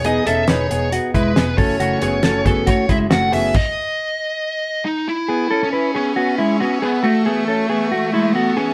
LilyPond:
<<
  \new Staff \with { instrumentName = "String machine" } { \time 4/4 \key e \major \tempo 4 = 137 << { r1 | r1 | r1 | <e'' cis'''>1~ |
<e'' cis'''>1 | } \\ { r1 | r1 | r1 | <gis' b''>1 |
<e fis' a''>1 | } >> }
  \new Staff \with { instrumentName = "Lead electric guitar" } { \time 4/4 \key e \major dis''8 e''8 cis''4 r8 b'4 cis''8~ | cis''8 cis''4 a'8 cis''8 e''8 fis''8 e''8 | dis''2. dis'8 e'8~ | e'8. cis'8. cis'4. cis'8 b8 |
a2. b8 cis'8 | }
  \new Staff \with { instrumentName = "Clean electric guitar" } { \time 4/4 \key e \major <b gis'>8 <cis' a'>8 <dis' b'>8 <b gis'>8 <b fis'>8 <gis e'>8 <b gis'>8 <cis' a'>8 | <a fis'>8 <b gis'>8 <cis' a'>8 <b gis'>8 <a fis'>8 <gis e'>8 <a fis'>8 <b gis'>8 | r1 | <b gis'>8 <cis' a'>8 <e' b'>8 <b gis'>8 <b fis'>8 <gis e'>8 <b fis'>8 <b gis'>8 |
<a fis'>8 <b gis'>8 <cis' a'>8 <b gis'>8 <a fis'>8 <gis e'>8 <a fis'>8 <b gis'>8 | }
  \new Staff \with { instrumentName = "Steel-string acoustic guitar" } { \time 4/4 \key e \major <e b dis' gis'>8 <b dis' gis'>8 <e b dis' gis'>8 <b dis' gis'>4. <e b dis' gis'>8 <e a cis' fis'>8 | <fis, cis e a cis' fis'>8 <e a cis' fis'>8 <e a cis' fis'>8 <e a cis' fis'>4. <e a cis' fis'>8 <e a cis' fis'>8 | r1 | r1 |
r1 | }
  \new Staff \with { instrumentName = "Picked electric bass" } { \clef bass \time 4/4 \key e \major e,,8 e,,8 e,,8 e,,8. r16 e,,8 e,,8 r8 | r8 fis,,8 fis,,8 fis,,8. r16 fis,,8 fis,,8 fis,,8 | r1 | r1 |
r1 | }
  \new DrumStaff \with { instrumentName = "Drums" } \drummode { \time 4/4 hh8 hh8 <hh sn>8 hh8 hh8 <hh bd sn>8 <hh sn>8 <hho bd>8 | hh8 hh8 <hh sn>8 <hh bd>8 <hh bd>8 <hh bd sn>8 <hh sn>8 hho8 | <cymc bd>4 r4 r4 r4 | r4 r4 r4 r4 |
r4 r4 r4 r4 | }
>>